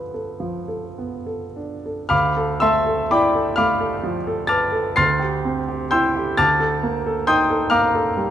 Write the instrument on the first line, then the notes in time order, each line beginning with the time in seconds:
grand piano
Already playing: D2 F3 B3 D4 A4 B4 D5
0.14 A4
0.40 F3
0.68 A4
0.98 B3
1.26 A4
1.56 D4
1.86 A4
2.09 D2 F5 B5 D6 F6
2.37 A4
2.60 A3 E5 A5 C6 E6
2.87 A4
3.11 E4 D5 G5 B5 D6
3.35 A4
3.56 A3 F5 B5 D6 F6
3.80 A4
4.03 F3
4.27 A4
4.47 B4 A5 D6 F6 A6
4.72 A4
4.96 D2 C6 F6 A6 C7
5.19 G4
5.45 C4
5.68 G4
5.91 E4 G5 C6 E6 G6
6.16 G4
6.37 D2 A5 D6 F6 A6
6.60 A4
6.83 A#3
7.06 A4
7.27 D#4 G5 C6 D#6 G6
7.50 A4
7.70 A#3 F5 A#5 D6 F6
7.95 A4
8.17 G3